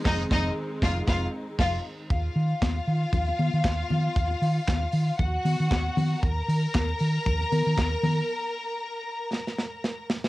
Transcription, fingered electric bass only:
X:1
M:4/4
L:1/16
Q:"Swing 16ths" 1/4=116
K:Ebdor
V:1 name="Fingered electric bass" clef=bass
F,,,2 F,,,2 z2 F,,,2 F,,,2 z2 F,,,2 z2 | E,,2 E,2 E,,2 E,2 E,,2 E, E, E,,2 E,2 | E,,2 E,2 E,,2 E,2 E,,2 E, E, E,,2 E,2 | E,,2 E,2 E,,2 E,2 E,,2 E, E, E,,2 E,2 |
z16 |]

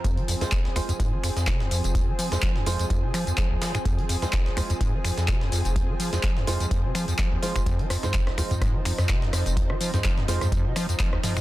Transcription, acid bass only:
X:1
M:4/4
L:1/16
Q:"Swing 16ths" 1/4=126
K:Fm
V:1 name="Acid bass" clef=bass
F,, F, F,, F,, F,,, G,, E,, F,, A,, F, F,, F,, C, F,, F,, F,,, | F,, F, F, F,, F, F,, F,, F,, F,, C, F, F,, F, E,, F, A,, | F,, F, F,, F,, F,,, G,, E,, F,, A,, F, F,, F,, C, F,, F,, F,,, | F,, F, F, F,, F, F,, F,, F,, F,, C, F, F,, F, E,, F, A,, |
F,, F, F,, F,, F,,, G,, E,, F,, A,, F, F,, F,, C, F,, F,, F,,, | F,, F, F, F,, F, F,, F,, F,, F,, C, F, F,, F, E,, F, A,, |]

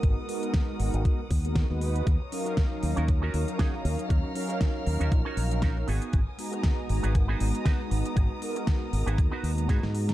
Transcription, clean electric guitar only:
X:1
M:4/4
L:1/16
Q:"Swing 16ths" 1/4=118
K:Abdor
V:1 name="Clean electric guitar"
z16 | z6 z [DEGB] z [DEGB] z2 [DEGA] z3 | z6 z [DEGB] z [DEGB] z2 [DEGB] z [CEGA]2 | z6 z [CEGA] z [CEGA] z2 [CEGc] z3 |
z6 z [CEGA] z [CEGc] z2 [CEGA] z3 |]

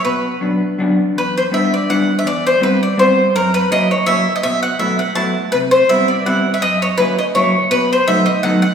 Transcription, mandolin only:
X:1
M:3/4
L:1/16
Q:"Swing" 1/4=165
K:Bm
V:1 name="Mandolin"
B8- B2 z2 | [K:Em] B2 c2 e2 d2 f3 e | d2 c2 B2 d2 c4 | ^A2 B2 ^d2 ^c2 e3 d |
e2 f2 e2 f2 a4 | B2 c2 e2 d2 f3 e | ^d2 ^c2 B2 d2 c4 | B2 c2 e2 ^d2 f2 f2 |]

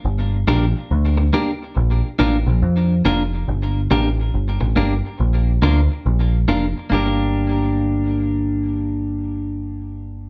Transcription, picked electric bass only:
X:1
M:4/4
L:1/16
Q:"Swing 16ths" 1/4=70
K:Gm
V:1 name="Picked electric bass" clef=bass
G,,,2 B,,, z D,,2 z2 B,,, z A,,, B,,, F,,2 F,,,2 | G,,,2 A,,,2 G,,, A,,, G,,, z B,,,2 D,, z B,,,2 F,,, z | G,,,16 |]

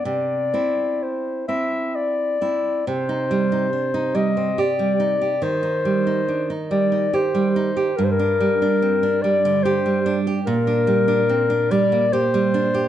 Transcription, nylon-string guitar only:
X:1
M:3/4
L:1/16
Q:1/4=71
K:C
V:1 name="Nylon-string guitar"
C,2 [CE]4 [CE]4 [CE]2 | [K:Cm] C, E G, E D E G, C G G, E G | E, E G, E D E G, E G G, E G | G,, D G, D C D G, D, G G, D G |
B,, D G, D C D G, B, G G, D G |]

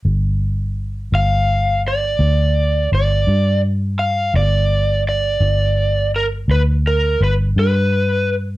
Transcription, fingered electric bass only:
X:1
M:12/8
L:1/8
Q:3/8=56
K:Gmix
V:1 name="Fingered electric bass" clef=bass
G,,,3 G,,,3 D,,2 G,,, G,,3 | G,,,3 G,,,3 D,,2 G,,, G,,3 |]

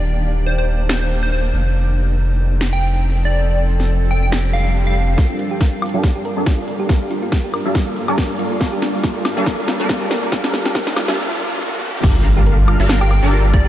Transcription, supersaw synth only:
X:1
M:4/4
L:1/16
Q:"Swing 16ths" 1/4=140
K:Gm
V:1 name="Supersaw synth"
z16 | z16 | z16 | [G,DABf]6- [G,DABf] [G,DABf]3 z [G,DABd]4- [G,DABd] |
[G,DABf]6- [G,DABf] [G,DABf]3 z [G,DABd]4- [G,DABd] | [G,DABf]6- [G,DABf] [G,DABf]3 z [G,DABd]4- [G,DABd] | [G,DABf]6- [G,DABf] [G,DABf] z8 | [G,DABf]6- [G,DABf] [G,DABf]3 z [G,DABd]4- [G,DABd] |]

